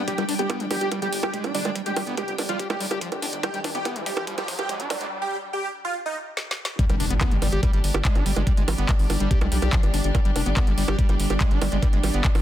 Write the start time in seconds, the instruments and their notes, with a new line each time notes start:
Already playing: synth texture G3 D4, string section D4 G4 D5 G5
0.08 acid bass G3, supersaw synth G4, kick, closed hi-hat, riser
0.18 analog synth bass G1, acid bass G3, closed hi-hat, high bongo
0.29 analog synth bass F1, acid bass D4, open hi-hat
0.39 analog synth bass G1, acid bass B3, supersaw synth G4, closed hi-hat
0.50 acid bass B3, kick, closed hi-hat, high bongo
0.60 analog synth bass G1, acid bass G3, closed hi-hat
0.71 analog synth bass G1, acid bass G3, supersaw synth G4, open hi-hat, high bongo
0.81 analog synth bass G1, acid bass G4, closed hi-hat
0.92 acid bass G3, kick, closed hi-hat, high bongo
1.02 analog synth bass G1, acid bass G3, supersaw synth G4, closed hi-hat
1.13 analog synth bass G1, open hi-hat
1.23 analog synth bass G1, acid bass G4, supersaw synth G4, closed hi-hat, high bongo
1.34 acid bass G#3, kick, closed hi-hat
1.44 analog synth bass G1, acid bass D4, closed hi-hat, high bongo
1.55 analog synth bass G1, acid bass G3, supersaw synth D4, open hi-hat
1.65 analog synth bass G1, acid bass G#3, closed hi-hat, high bongo
1.75 acid bass G3, kick, closed hi-hat
1.86 analog synth bass G1, acid bass G#3, supersaw synth G4, closed hi-hat
1.96 analog synth bass G#1, acid bass G3, open hi-hat, high bongo
2.07 analog synth bass G1, acid bass B3, closed hi-hat
2.17 acid bass G#3, supersaw synth G4, kick, closed hi-hat, high bongo
2.28 analog synth bass G1, closed hi-hat
2.38 analog synth bass G1, acid bass D4, open hi-hat, high bongo
2.49 analog synth bass G1, acid bass G3, supersaw synth F4, closed hi-hat
2.59 acid bass G4, kick, closed hi-hat
2.70 analog synth bass B1, acid bass G#3, supersaw synth G4, closed hi-hat, high bongo
2.80 analog synth bass B1, acid bass G3, open hi-hat
2.91 analog synth bass B1, acid bass G4, closed hi-hat, high bongo
3.01 acid bass F3, kick, closed hi-hat
3.12 analog synth bass G1, closed hi-hat, high bongo
3.22 analog synth bass G1, acid bass D4, open hi-hat
3.33 analog synth bass G1, closed hi-hat
3.43 acid bass G3, supersaw synth G4, kick, closed hi-hat, high bongo
3.54 analog synth bass G1, acid bass G3, closed hi-hat
3.64 analog synth bass F1, acid bass D4, kick, open hi-hat, high bongo
3.75 analog synth bass G1, acid bass B3, supersaw synth G4, closed hi-hat
3.85 acid bass B3, kick, closed hi-hat, high bongo
3.96 analog synth bass G1, acid bass G3, closed hi-hat
4.06 analog synth bass G1, acid bass G3, supersaw synth G4, kick, open hi-hat
4.17 analog synth bass G1, acid bass G4, closed hi-hat, high bongo
4.27 acid bass G3, kick, closed hi-hat
4.38 analog synth bass G1, acid bass G3, supersaw synth G4, closed hi-hat, high bongo
4.48 analog synth bass G1, kick, open hi-hat
4.59 analog synth bass G1, acid bass G4, supersaw synth G4, closed hi-hat, high bongo
4.69 acid bass G#3, kick, closed hi-hat
4.80 analog synth bass G1, acid bass D4, closed hi-hat
4.90 analog synth bass G1, acid bass G3, supersaw synth D4, kick, open hi-hat, high bongo
5.01 analog synth bass G1, acid bass G#3, closed hi-hat
5.22 supersaw synth G4
5.53 supersaw synth G4
5.85 supersaw synth F4
6.06 supersaw synth D#4
6.37 snare
6.51 snare
6.65 snare
6.79 acid bass G3, synth texture G3 D4, string section D4, kick, closed hi-hat, impact
6.89 analog synth bass G1, acid bass G3, closed hi-hat, high bongo
7.00 analog synth bass F1, acid bass D4, open hi-hat
7.10 analog synth bass G1, acid bass B3, string section G4, closed hi-hat
7.16 string section D5
7.21 acid bass B3, kick, clap, closed hi-hat, high bongo
7.31 analog synth bass G1, acid bass G3, closed hi-hat
7.42 analog synth bass G1, acid bass G3, open hi-hat, high bongo
7.52 analog synth bass G1, acid bass G4, closed hi-hat
7.63 acid bass G3, kick, closed hi-hat, high bongo
7.73 analog synth bass G1, acid bass G3, closed hi-hat
7.84 analog synth bass G1, open hi-hat
7.94 analog synth bass G1, acid bass G4, closed hi-hat, high bongo
8.05 acid bass G#3, kick, clap, closed hi-hat
8.15 analog synth bass G1, acid bass D4, closed hi-hat, high bongo
8.26 analog synth bass G1, acid bass G3, open hi-hat
8.36 analog synth bass G1, acid bass G#3, closed hi-hat, high bongo
8.47 acid bass G3, kick, closed hi-hat
8.57 analog synth bass G1, acid bass G#3, closed hi-hat
8.68 analog synth bass G#1, acid bass G3, open hi-hat, high bongo
8.78 analog synth bass G1, acid bass B3, closed hi-hat
8.89 acid bass G#3, kick, clap, closed hi-hat, high bongo
8.99 analog synth bass G1, open hi-hat
9.10 analog synth bass G1, acid bass D4, open hi-hat, high bongo
9.20 analog synth bass G1, acid bass G3, closed hi-hat
9.31 acid bass G4, kick, closed hi-hat
9.41 analog synth bass B1, acid bass G#3, closed hi-hat, high bongo
9.52 analog synth bass B1, acid bass G3, open hi-hat
9.62 analog synth bass B1, acid bass G4, closed hi-hat, high bongo
9.73 acid bass F3, kick, clap, closed hi-hat
9.83 analog synth bass G1, closed hi-hat, high bongo
9.94 analog synth bass G1, acid bass D4, open hi-hat
10.04 analog synth bass G1, closed hi-hat
10.15 acid bass G3, kick, closed hi-hat, high bongo
10.25 analog synth bass G1, acid bass G3, closed hi-hat
10.36 analog synth bass F1, acid bass D4, open hi-hat, high bongo
10.46 analog synth bass G1, acid bass B3, closed hi-hat
10.57 acid bass B3, kick, clap, closed hi-hat, high bongo
10.67 analog synth bass G1, acid bass G3, closed hi-hat
10.78 analog synth bass G1, acid bass G3, open hi-hat
10.88 analog synth bass G1, acid bass G4, high bongo
10.99 acid bass G3, kick, closed hi-hat
11.09 analog synth bass G1, acid bass G3, closed hi-hat, high bongo
11.20 analog synth bass G1, open hi-hat
11.30 analog synth bass G1, acid bass G4, closed hi-hat, high bongo
11.41 acid bass G#3, kick, clap, closed hi-hat
11.51 analog synth bass G1, acid bass D4, closed hi-hat
11.62 analog synth bass G1, acid bass G3, open hi-hat, high bongo
11.72 analog synth bass G1, acid bass G#3, closed hi-hat
11.83 acid bass G3, kick, closed hi-hat, high bongo
11.93 analog synth bass G1, acid bass G#3, closed hi-hat
12.03 analog synth bass G#1, acid bass G3, open hi-hat, high bongo
12.14 analog synth bass G1, acid bass B3, closed hi-hat
12.24 acid bass G#3, kick, clap, closed hi-hat
12.35 analog synth bass G1, open hi-hat, high bongo